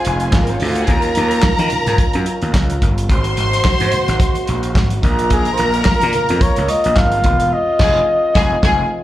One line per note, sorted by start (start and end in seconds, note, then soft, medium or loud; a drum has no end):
0.00 0.86 D#3 medium
0.00 0.84 G#3 medium
0.00 0.86 C4 medium
0.00 3.05 F4 loud
0.00 0.32 G#4 loud
0.00 0.29 C5 medium
0.00 0.31 G#5 loud
0.05 0.29 F1 medium
0.05 closed hi-hat medium
0.20 closed hi-hat soft
0.33 0.56 G#1 medium
0.33 kick loud
0.33 snare loud
0.33 clap medium
0.33 muted conga soft
0.42 0.49 A#3 medium
0.42 0.49 A#4 medium
0.47 0.55 C4 medium
0.47 0.55 C5 medium
0.47 closed hi-hat medium
0.47 muted conga soft
0.54 0.61 C#4 medium
0.54 0.61 C#5 medium
0.60 0.84 D2 medium
0.60 0.69 D#4 medium
0.60 0.68 D#5 medium
0.60 open hi-hat medium
0.60 low conga medium
0.69 0.76 F4 medium
0.69 0.77 F5 medium
0.75 0.83 F#4 medium
0.75 0.83 F#5 medium
0.75 closed hi-hat medium
0.83 0.89 G#4 medium
0.83 0.89 G#5 medium
0.87 1.11 D#2 medium
0.87 3.07 D#3 medium
0.87 3.07 F#3 medium
0.87 3.08 C#4 medium
0.87 2.78 A#4 loud
0.87 2.78 A#5 loud
0.87 kick loud
0.87 closed hi-hat medium
1.02 closed hi-hat medium
1.02 muted conga soft
1.15 1.39 D#2 loud
1.15 closed hi-hat medium
1.15 high conga medium
1.31 closed hi-hat medium
1.42 muted slap bass stroke medium
1.42 kick loud
1.42 snare loud
1.42 clap medium
1.42 muted conga soft
1.42 high conga medium
1.58 1.69 D#3 loud
1.58 closed hi-hat medium
1.58 muted conga soft
1.58 high conga medium
1.70 closed hi-hat medium
1.70 low conga medium
1.86 1.97 G#2 medium
1.86 snare soft
1.86 closed hi-hat soft
1.86 low conga medium
1.98 kick loud
1.98 closed hi-hat medium
1.98 high conga medium
2.13 2.25 F#2 medium
2.13 closed hi-hat medium
2.26 closed hi-hat medium
2.42 2.54 D#2 medium
2.42 closed hi-hat soft
2.54 2.77 C#2 medium
2.54 kick loud
2.54 snare loud
2.54 clap medium
2.54 muted conga soft
2.70 closed hi-hat medium
2.82 3.05 G1 medium
2.82 kick medium
2.82 closed hi-hat medium
2.82 low conga medium
2.98 closed hi-hat medium
3.09 3.33 G#1 loud
3.09 7.48 C#3 medium
3.09 7.48 G#3 medium
3.09 5.01 A#3 medium
3.09 5.01 F#4 medium
3.09 4.72 C5 loud
3.09 4.72 C6 loud
3.09 kick loud
3.09 closed hi-hat medium
3.24 closed hi-hat medium
3.24 muted conga soft
3.37 3.60 G#1 loud
3.37 closed hi-hat medium
3.37 high conga medium
3.53 closed hi-hat medium
3.64 kick loud
3.64 snare loud
3.64 clap medium
3.64 muted conga soft
3.64 high conga medium
3.80 3.90 G#2 medium
3.80 closed hi-hat medium
3.80 high conga medium
3.92 closed hi-hat medium
3.92 low conga medium
4.08 4.18 G#1 loud
4.08 snare soft
4.08 closed hi-hat soft
4.08 low conga medium
4.20 kick loud
4.20 closed hi-hat loud
4.20 high conga medium
4.35 closed hi-hat medium
4.35 muted conga soft
4.47 4.76 A#1 loud
4.47 closed hi-hat medium
4.63 closed hi-hat soft
4.75 4.98 G#1 medium
4.75 kick loud
4.75 snare loud
4.75 clap medium
4.90 closed hi-hat medium
4.90 muted conga soft
5.03 5.49 A#1 medium
5.03 7.50 A#3 medium
5.03 9.03 F4 loud
5.03 7.21 A#4 loud
5.03 7.21 A#5 loud
5.03 kick loud
5.03 closed hi-hat medium
5.03 low conga medium
5.19 closed hi-hat medium
5.30 5.55 G#4 loud
5.30 kick loud
5.30 closed hi-hat medium
5.30 muted conga soft
5.45 closed hi-hat soft
5.45 muted conga soft
5.53 5.61 C5 medium
5.58 5.82 A#1 loud
5.58 6.14 A#4 loud
5.58 closed hi-hat medium
5.58 high conga medium
5.74 closed hi-hat soft
5.85 kick loud
5.85 snare loud
5.85 clap medium
5.85 high conga medium
6.01 6.12 A#2 loud
6.01 closed hi-hat medium
6.01 muted conga soft
6.01 high conga medium
6.13 6.43 A#4 loud
6.13 closed hi-hat medium
6.13 low conga medium
6.29 6.40 F2 medium
6.29 closed hi-hat medium
6.29 low conga medium
6.41 6.71 C#5 loud
6.41 kick loud
6.41 closed hi-hat medium
6.41 muted conga soft
6.41 high conga medium
6.56 6.68 C#2 loud
6.56 closed hi-hat medium
6.56 muted conga soft
6.68 6.99 D#5 loud
6.68 closed hi-hat medium
6.84 6.95 A#1 medium
6.84 closed hi-hat soft
6.96 7.20 G#1 medium
6.96 7.55 F5 loud
6.96 kick loud
6.96 snare loud
6.96 clap medium
7.12 closed hi-hat medium
7.12 muted conga soft
7.24 7.52 E1 medium
7.24 kick loud
7.24 closed hi-hat medium
7.24 low conga medium
7.40 closed hi-hat medium
7.51 9.03 D#3 medium
7.51 9.03 G#3 medium
7.51 9.03 C4 medium
7.51 9.03 D#5 loud
7.79 7.99 F1 loud
7.79 8.00 G#4 medium
7.79 8.00 G#5 medium
7.79 kick loud
7.79 snare loud
7.79 crash medium
8.35 8.55 F1 medium
8.35 8.55 G#4 loud
8.35 8.55 G#5 loud
8.35 kick loud
8.35 snare loud
8.63 8.83 F1 loud
8.63 8.83 G#4 loud
8.63 8.83 G#5 loud
8.63 kick loud
8.63 snare loud